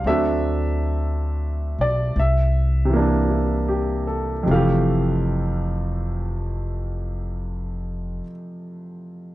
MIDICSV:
0, 0, Header, 1, 3, 480
1, 0, Start_track
1, 0, Key_signature, -1, "major"
1, 0, Tempo, 1052632
1, 21, Time_signature, 4, 2, 24, 8
1, 982, Tempo, 1129944
1, 1462, Tempo, 1197605
1, 1942, Tempo, 1232033
1, 3838, End_track
2, 0, Start_track
2, 0, Title_t, "Grand piano"
2, 0, Program_c, 0, 0
2, 0, Control_c, 0, 64, 127
2, 26, Control_c, 0, 64, 0
2, 26, Note_on_c, 0, 60, 37
2, 28, Note_on_c, 0, 54, 37
2, 31, Note_on_c, 0, 62, 45
2, 33, Note_on_c, 0, 57, 35
2, 33, Note_on_c, 0, 76, 70
2, 97, Control_c, 0, 64, 127
2, 826, Note_on_c, 0, 74, 67
2, 843, Note_off_c, 0, 76, 0
2, 984, Note_off_c, 0, 60, 0
2, 985, Note_off_c, 0, 54, 0
2, 986, Note_off_c, 0, 62, 0
2, 987, Note_off_c, 0, 57, 0
2, 988, Control_c, 0, 64, 0
2, 992, Note_off_c, 0, 74, 0
2, 999, Note_on_c, 0, 76, 57
2, 1064, Control_c, 0, 64, 127
2, 1279, Note_on_c, 0, 48, 46
2, 1297, Note_on_c, 0, 52, 40
2, 1313, Note_on_c, 0, 58, 41
2, 1324, Note_on_c, 0, 62, 47
2, 1466, Note_on_c, 0, 64, 31
2, 1622, Note_on_c, 0, 67, 36
2, 1763, Note_off_c, 0, 64, 0
2, 1769, Note_off_c, 0, 76, 0
2, 1778, Note_on_c, 0, 69, 39
2, 1872, Note_off_c, 0, 67, 0
2, 1922, Note_on_c, 0, 41, 49
2, 1927, Note_off_c, 0, 48, 0
2, 1933, Note_on_c, 0, 48, 40
2, 1941, Note_off_c, 0, 52, 0
2, 1946, Note_on_c, 0, 52, 47
2, 1948, Control_c, 0, 64, 0
2, 1949, Note_off_c, 0, 58, 0
2, 1955, Note_off_c, 0, 62, 0
2, 1955, Note_on_c, 0, 77, 62
2, 1958, Note_on_c, 0, 57, 44
2, 1967, Note_on_c, 0, 67, 53
2, 2011, Control_c, 0, 64, 127
2, 2032, Note_off_c, 0, 69, 0
2, 3385, Note_off_c, 0, 41, 0
2, 3396, Note_off_c, 0, 48, 0
2, 3401, Note_off_c, 0, 77, 0
2, 3409, Note_off_c, 0, 52, 0
2, 3420, Note_off_c, 0, 57, 0
2, 3429, Note_off_c, 0, 67, 0
2, 3838, End_track
3, 0, Start_track
3, 0, Title_t, "Upright bass"
3, 0, Program_c, 1, 32
3, 18, Note_on_c, 1, 38, 57
3, 794, Note_off_c, 1, 38, 0
3, 814, Note_on_c, 1, 35, 51
3, 970, Note_off_c, 1, 35, 0
3, 984, Note_on_c, 1, 36, 61
3, 1927, Note_off_c, 1, 36, 0
3, 1939, Note_on_c, 1, 29, 67
3, 3386, Note_off_c, 1, 29, 0
3, 3838, End_track
0, 0, End_of_file